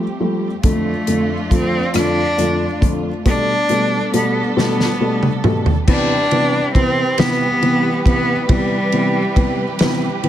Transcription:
Already playing: string section F3 G3 A3 C4 G4
0.20 felt piano F3 G3 A3
0.63 string section F2 D4 F4, felt piano F2 D3 F3 A3, cello A3, kick, closed hi-hat
1.07 felt piano F2 D3 F3 A3, closed hi-hat
1.50 felt piano F2 D3 F3 A3, cello C4, kick, closed hi-hat
1.94 felt piano F2 D3 F3 A3, cello D4, cross-stick, closed hi-hat
2.38 felt piano F2 D3 F3 A3, closed hi-hat
2.81 felt piano F2 D3 F3 A3, kick, closed hi-hat
3.25 felt piano B2 G3 A3, string section G3 B3 D4 A4, cello D4, kick, closed hi-hat
3.69 felt piano B2 G3 A3, closed hi-hat
4.13 felt piano B2 G3 A3, cello B3, closed hi-hat
4.56 felt piano B2 G3 A3, cello B3, snare
4.80 snare
5.00 felt piano B2 G3 A3
5.23 mid tom
5.44 felt piano B2 G3 A3, mid tom
5.66 floor tom
5.87 felt piano C3 E3 B3, string section C3 E3 G3 G4 B4, cello D4, kick, crash
6.31 felt piano C3 E3 B3, ride
6.75 felt piano C3 E3 B3, cello C4, kick, ride
7.18 felt piano C3 E3 B3, cello B3, snare, ride
7.61 felt piano C3 E3 B3, ride
8.05 felt piano C3 E3 B3, cello B3, kick, ride
8.49 felt piano C3 E3 B3, cello G3, kick, ride
8.92 felt piano C3 E3 B3, ride
9.36 felt piano C3 E3 B3, kick, ride
9.79 felt piano C3 E3 B3, snare, ride
10.23 felt piano E3 B3, ride

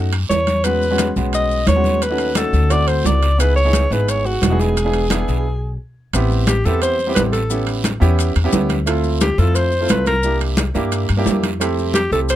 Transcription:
Already playing: upright bass F#2, grand piano F#4
0.12 high conga, high timbale, maracas
0.30 upright bass E2, alto saxophone C#5, high conga, low timbale, short guiro, maracas
0.47 high conga, high timbale, short guiro, maracas
0.64 grand piano G#3 B3 C#4 F#4, alto saxophone B4, high conga, high timbale, long guiro, maracas
0.82 high conga, maracas
0.91 grand piano G#3 B3 C#4 F#4
0.98 high conga, high timbale, low timbale, short guiro, maracas
1.16 upright bass B1, grand piano G#3 B3 C#4 F#4, short guiro, maracas
1.33 alto saxophone D#5, high conga, high timbale, long guiro, maracas
1.50 high conga, maracas
1.67 upright bass D#2, alto saxophone C#5, high conga, high timbale, low timbale, short guiro, maracas
1.76 grand piano G#3 B3 C#4 F#4
1.84 high conga, short guiro, maracas
2.02 alto saxophone B4, high conga, high timbale, long guiro, maracas
2.10 grand piano A3 C#4 D#4 F#4
2.18 high conga, high timbale, maracas
2.35 grand piano A3 C#4 D#4 F#4, alto saxophone A4, high conga, high timbale, low timbale, short guiro, maracas
2.53 upright bass D2, high conga, short guiro, maracas
2.70 grand piano A3 C4 E4 F#4, alto saxophone D5, high conga, high timbale, long guiro, maracas
2.87 alto saxophone C5, high conga, high timbale, maracas
3.05 upright bass C#2, alto saxophone D5, high conga, low timbale, short guiro, maracas
3.23 high timbale, short guiro, maracas
3.38 grand piano B3 D#4 E4 G#4, alto saxophone B4, high conga, high timbale, long guiro, maracas
3.56 alto saxophone C#5, high conga, maracas
3.65 grand piano B3 D#4 E4 G#4
3.73 high conga, high timbale, low timbale, short guiro, maracas
3.91 upright bass G#1, grand piano B3 D#4 E4 G#4, alto saxophone B4, short guiro, maracas
4.08 alto saxophone C#5, high conga, high timbale, long guiro, maracas
4.25 alto saxophone F#4, high conga, maracas
4.42 upright bass E1, high conga, high timbale, low timbale, short guiro, maracas
4.50 grand piano B3 D#4 E4 G#4
4.60 alto saxophone G#4, short guiro, maracas
4.76 high conga, high timbale, long guiro, maracas
4.84 grand piano B3 D4 E4 G#4
4.93 high conga, high timbale, maracas
5.10 grand piano B3 D4 E4 G#4, high conga, high timbale, low timbale, short guiro, maracas
5.28 upright bass B1, high conga, short guiro, maracas
6.13 upright bass A1, grand piano B3 C4 E4 G4, high conga, high timbale, long guiro, maracas
6.31 high conga, maracas
6.47 alto saxophone G4, high conga, high timbale, low timbale, short guiro, maracas
6.64 upright bass E2, grand piano B3 C4 E4 G4, alto saxophone A4, high conga, short guiro, maracas
6.81 alto saxophone C5, high conga, high timbale, long guiro, maracas
6.99 high conga, maracas
7.07 grand piano B3 C4 E4 G4
7.15 upright bass A1, alto saxophone B4, high conga, high timbale, low timbale, short guiro, maracas
7.33 alto saxophone A4, high timbale, short guiro, maracas
7.50 grand piano B3 C#4 E4 G4, high conga, long guiro, maracas
7.67 high conga, high timbale, maracas
7.84 high conga, high timbale, low timbale, short guiro, maracas
8.00 upright bass E2, grand piano B3 C#4 E4 G4, high conga, short guiro, maracas
8.18 high conga, high timbale, long guiro, maracas
8.35 upright bass E2, high conga, high timbale, maracas
8.44 grand piano B3 C#4 E4 G4
8.52 upright bass D2, high conga, low timbale, short guiro, maracas
8.69 high conga, high timbale, short guiro, maracas
8.86 grand piano A3 C4 E4 F4, high conga, high timbale, long guiro, maracas
9.04 high conga, maracas
9.21 alto saxophone G4, high conga, high timbale, low timbale, short guiro, maracas
9.38 upright bass F2, grand piano A3 C4 E4 F4, alto saxophone A4, high conga, short guiro, maracas
9.55 alto saxophone C5, high conga, high timbale, long guiro, maracas
9.72 high conga, maracas
9.81 grand piano A3 C4 E4 F4
9.89 upright bass C2, alto saxophone B4, high conga, high timbale, low timbale, short guiro, maracas
10.06 alto saxophone A#4, high conga, high timbale, short guiro, maracas
10.23 grand piano A#3 D4 E4 G4, long guiro, maracas
10.41 high conga, high timbale, maracas
10.57 high conga, high timbale, low timbale, short guiro, maracas
10.74 upright bass G2, grand piano A#3 D4 E4 G4, high conga, short guiro, maracas
10.92 high conga, high timbale, long guiro, maracas
11.09 upright bass G2, high conga, high timbale, maracas
11.17 grand piano A#3 D4 E4 G4
11.26 high conga, low timbale, short guiro, maracas
11.43 high conga, high timbale, short guiro, maracas
11.60 grand piano A3 C4 E4 G4, high conga, high timbale, long guiro, maracas
11.78 high conga, maracas
11.94 alto saxophone G4, high conga, high timbale, low timbale, short guiro, maracas
12.11 upright bass C2, grand piano A3 C4 E4 G4, alto saxophone A4, high conga, short guiro, maracas
12.29 alto saxophone C5, high conga, high timbale, long guiro, maracas

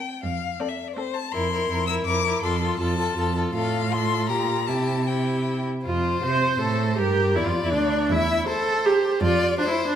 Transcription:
Already playing: viola C4, violin A#4 G5
0.23 cello F2, violin F5
0.59 viola C4, violin A4 D5
0.69 violin E5
0.88 violin D5
0.95 viola C4, violin A4 C5
1.14 violin A5
1.32 cello F2, viola E4, violin A#4 C6
1.52 viola E4, violin A#4
1.69 cello F2, viola E4, violin A#4
1.87 viola E4, violin A#4 E6
2.05 cello F2, viola E4, violin A#4 D6
2.23 viola E4, violin A#4
2.42 cello F2, viola F4, violin A4 C6
2.61 viola F4, violin A4
2.79 cello F2, viola F4, violin A4 A5
2.98 viola F4, violin A4
3.16 cello F2, viola F4, violin A4
3.35 viola F4, violin A4
3.54 cello A2, viola F4, violin A4 F5
3.91 viola F4, violin A4 C6
4.29 cello A#2, viola F4, violin G4 A#5
4.67 cello C3, viola E4, violin G4 A5
5.07 viola E4, violin G4 G5
5.85 cello F2, violin F4 C5, viola F4
6.23 cello C3, violin C5, viola C5
6.60 cello A2, violin A4, viola A4
6.97 cello G2, violin G4 A#4, viola G4
7.36 cello E2, viola E4, violin E4 D5
7.44 cello F2, violin F4, viola F4
7.63 cello E2, violin E4, viola E4
7.73 cello D2, violin D4, viola D4
8.10 cello E2, viola E4, violin E5
8.46 viola A4, violin C5 A#5
8.85 viola G4, violin A#5
9.21 cello F2, viola F4, violin D5
9.58 viola D4, violin C5 A5
9.68 viola E4
9.87 viola D4

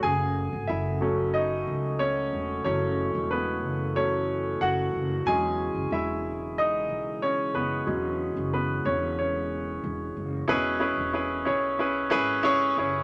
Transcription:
Already playing: tonewheel organ A3
0.03 upright bass F#1, tonewheel organ C#3 F#4, grand piano G#4 G#5
0.53 upright bass G#1
0.67 upright bass F#1, grand piano E4 E5
1.01 grand piano F#3 A3 C#4
1.34 grand piano D#4 D#5
1.67 upright bass C#2
1.99 grand piano C#4 C#5
2.33 upright bass E1
2.64 upright bass F#1, tonewheel organ E3, grand piano F#3 A3 C#4 C#5
3.15 upright bass E1
3.31 grand piano B3 B4
3.64 upright bass F#1
3.96 grand piano F#3 A3 C#4 C#5
4.61 upright bass F#1, grand piano F#4 F#5
4.93 upright bass F#1
5.26 upright bass E1, grand piano F#3 G#3 C#4 G#4 G#5, tonewheel organ G#3
5.75 upright bass F#1
5.91 upright bass E1, grand piano E4 E5
6.58 grand piano D#4 D#5
6.89 upright bass B1
7.22 grand piano C#4 C#5
7.54 upright bass F#1, grand piano B3 B4
7.86 upright bass E1, grand piano F#3 G#3 C#4
8.36 upright bass F#1
8.53 grand piano B3 B4
8.85 upright bass E1, grand piano C#4 C#5
9.19 grand piano C#4 C#5
9.83 upright bass E1
10.17 upright bass F#1
10.48 upright bass E1, grand piano B2 C#4 E4 G#4 B4
10.80 grand piano C#4 E4 G#4 B4
10.97 upright bass E1
11.13 grand piano C#4 E4 G#4 B4
11.45 upright bass B1, grand piano C#4 E4 G#4 C#5
11.79 grand piano C#4 E4 G#4 B4
12.10 upright bass G#1, grand piano C#4 E4 G#4 B4
12.43 grand piano C#4 E4 G#4 C#5
12.77 upright bass F#1, grand piano C#4 E4 G#4 C#5

